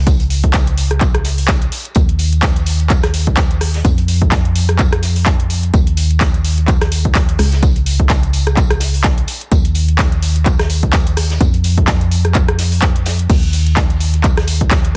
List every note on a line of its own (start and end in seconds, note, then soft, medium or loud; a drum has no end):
0.00 1.70 C#2 medium
0.07 kick loud
0.07 closed hi-hat medium
0.07 tambourine medium
0.20 closed hi-hat soft
0.30 open hi-hat loud
0.30 tambourine medium
0.44 kick medium
0.44 closed hi-hat soft
0.53 kick loud
0.53 snare loud
0.53 clap loud
0.53 closed hi-hat medium
0.53 tambourine medium
0.67 closed hi-hat soft
0.78 open hi-hat loud
0.78 tambourine medium
0.91 cross-stick medium
0.91 closed hi-hat soft
1.01 kick loud
1.01 clap medium
1.01 closed hi-hat loud
1.01 tambourine medium
1.15 cross-stick medium
1.15 closed hi-hat soft
1.25 snare soft
1.25 open hi-hat loud
1.25 tambourine medium
1.38 open hi-hat medium
1.48 kick loud
1.48 snare loud
1.48 clap loud
1.48 closed hi-hat loud
1.48 tambourine loud
1.62 closed hi-hat soft
1.72 open hi-hat loud
1.72 tambourine medium
1.85 closed hi-hat soft
1.95 3.83 D#2 medium
1.95 kick loud
1.95 closed hi-hat medium
1.95 tambourine medium
2.09 closed hi-hat soft
2.19 open hi-hat loud
2.19 tambourine medium
2.33 closed hi-hat soft
2.43 kick loud
2.43 snare loud
2.43 clap loud
2.43 closed hi-hat medium
2.43 tambourine loud
2.56 closed hi-hat soft
2.66 open hi-hat loud
2.66 tambourine medium
2.80 closed hi-hat soft
2.90 kick loud
2.90 clap medium
2.90 closed hi-hat medium
2.90 tambourine loud
3.03 cross-stick medium
3.03 snare soft
3.03 closed hi-hat soft
3.14 open hi-hat loud
3.14 tambourine medium
3.27 kick medium
3.27 closed hi-hat soft
3.37 kick loud
3.37 snare loud
3.37 clap loud
3.37 closed hi-hat medium
3.37 tambourine medium
3.51 closed hi-hat soft
3.61 cross-stick medium
3.61 open hi-hat loud
3.61 open hi-hat medium
3.74 snare soft
3.74 closed hi-hat soft
3.85 5.72 F2 medium
3.85 kick loud
3.85 closed hi-hat medium
3.85 tambourine medium
3.98 closed hi-hat soft
4.08 open hi-hat loud
4.08 tambourine medium
4.22 kick medium
4.22 closed hi-hat soft
4.32 kick loud
4.32 snare loud
4.32 clap loud
4.32 closed hi-hat medium
4.32 tambourine medium
4.45 closed hi-hat soft
4.55 open hi-hat loud
4.55 tambourine medium
4.69 cross-stick medium
4.69 closed hi-hat soft
4.79 kick loud
4.79 clap medium
4.79 closed hi-hat medium
4.79 tambourine medium
4.92 cross-stick medium
4.92 closed hi-hat soft
5.02 snare soft
5.02 open hi-hat loud
5.02 tambourine medium
5.16 open hi-hat medium
5.26 kick loud
5.26 snare loud
5.26 clap loud
5.26 closed hi-hat medium
5.26 tambourine medium
5.40 closed hi-hat soft
5.50 open hi-hat loud
5.50 tambourine medium
5.63 closed hi-hat soft
5.74 7.37 D#2 medium
5.74 kick loud
5.74 closed hi-hat medium
5.74 tambourine medium
5.87 closed hi-hat soft
5.97 open hi-hat loud
5.97 tambourine medium
6.11 closed hi-hat soft
6.21 kick loud
6.21 snare loud
6.21 clap loud
6.21 closed hi-hat medium
6.21 tambourine medium
6.34 closed hi-hat soft
6.45 open hi-hat loud
6.45 tambourine medium
6.58 closed hi-hat soft
6.68 kick loud
6.68 clap medium
6.68 closed hi-hat medium
6.68 tambourine medium
6.81 cross-stick medium
6.81 snare soft
6.81 closed hi-hat soft
6.92 open hi-hat loud
6.92 tambourine medium
7.05 kick medium
7.05 closed hi-hat soft
7.15 kick loud
7.15 snare loud
7.15 clap loud
7.15 closed hi-hat medium
7.15 tambourine medium
7.29 closed hi-hat soft
7.39 9.26 C#2 medium
7.39 cross-stick medium
7.39 open hi-hat medium
7.39 open hi-hat loud
7.52 snare soft
7.52 closed hi-hat soft
7.63 kick loud
7.63 closed hi-hat medium
7.63 tambourine medium
7.76 closed hi-hat soft
7.86 open hi-hat loud
7.86 tambourine medium
8.00 kick medium
8.00 closed hi-hat soft
8.10 kick loud
8.10 snare loud
8.10 clap loud
8.10 closed hi-hat medium
8.10 tambourine medium
8.23 closed hi-hat soft
8.33 open hi-hat loud
8.33 tambourine medium
8.47 cross-stick medium
8.47 closed hi-hat soft
8.57 kick loud
8.57 clap medium
8.57 closed hi-hat medium
8.57 tambourine medium
8.70 cross-stick medium
8.70 closed hi-hat soft
8.80 snare soft
8.80 open hi-hat loud
8.80 tambourine medium
8.94 open hi-hat medium
9.04 kick loud
9.04 snare loud
9.04 clap loud
9.04 closed hi-hat medium
9.04 tambourine medium
9.18 closed hi-hat soft
9.28 open hi-hat loud
9.28 tambourine medium
9.41 closed hi-hat soft
9.52 11.39 D#2 medium
9.52 kick loud
9.52 closed hi-hat loud
9.52 tambourine medium
9.65 closed hi-hat soft
9.75 open hi-hat loud
9.75 tambourine medium
9.89 closed hi-hat soft
9.99 kick loud
9.99 snare loud
9.99 clap loud
9.99 closed hi-hat loud
9.99 tambourine medium
10.12 closed hi-hat soft
10.22 open hi-hat loud
10.22 tambourine medium
10.36 closed hi-hat soft
10.46 kick loud
10.46 clap medium
10.46 closed hi-hat loud
10.46 tambourine medium
10.59 cross-stick medium
10.59 snare soft
10.59 closed hi-hat soft
10.70 open hi-hat loud
10.70 tambourine medium
10.83 kick medium
10.83 closed hi-hat soft
10.93 kick loud
10.93 snare loud
10.93 clap loud
10.93 closed hi-hat loud
10.93 tambourine medium
11.07 closed hi-hat soft
11.17 cross-stick medium
11.17 open hi-hat medium
11.17 open hi-hat loud
11.30 snare soft
11.30 closed hi-hat soft
11.40 13.27 F2 medium
11.40 kick loud
11.40 closed hi-hat loud
11.40 tambourine medium
11.54 closed hi-hat soft
11.64 open hi-hat loud
11.64 tambourine medium
11.78 kick medium
11.78 closed hi-hat soft
11.87 kick loud
11.87 snare loud
11.87 clap loud
11.87 closed hi-hat medium
11.87 tambourine medium
12.01 closed hi-hat soft
12.11 open hi-hat loud
12.11 tambourine medium
12.25 cross-stick medium
12.25 closed hi-hat soft
12.34 kick loud
12.34 clap medium
12.34 closed hi-hat loud
12.34 tambourine medium
12.48 cross-stick medium
12.48 closed hi-hat soft
12.59 snare soft
12.59 open hi-hat loud
12.59 tambourine medium
12.72 open hi-hat medium
12.82 kick loud
12.82 snare loud
12.82 clap loud
12.82 closed hi-hat loud
12.82 tambourine medium
12.96 closed hi-hat soft
13.06 snare loud
13.06 open hi-hat loud
13.06 tambourine medium
13.19 closed hi-hat soft
13.30 14.93 D#2 medium
13.30 kick loud
13.30 closed hi-hat loud
13.30 tambourine medium
13.30 crash medium
13.43 closed hi-hat soft
13.53 open hi-hat loud
13.53 tambourine medium
13.67 closed hi-hat soft
13.77 kick loud
13.77 snare loud
13.77 clap loud
13.77 closed hi-hat medium
13.77 tambourine loud
13.90 closed hi-hat soft
14.00 open hi-hat loud
14.00 tambourine medium
14.14 closed hi-hat soft
14.24 kick loud
14.24 clap medium
14.24 closed hi-hat loud
14.24 tambourine medium
14.37 cross-stick medium
14.37 snare soft
14.37 closed hi-hat soft
14.47 open hi-hat loud
14.47 tambourine medium
14.61 kick medium
14.61 closed hi-hat soft
14.71 kick loud
14.71 snare loud
14.71 clap loud
14.71 closed hi-hat loud
14.71 tambourine medium
14.85 closed hi-hat soft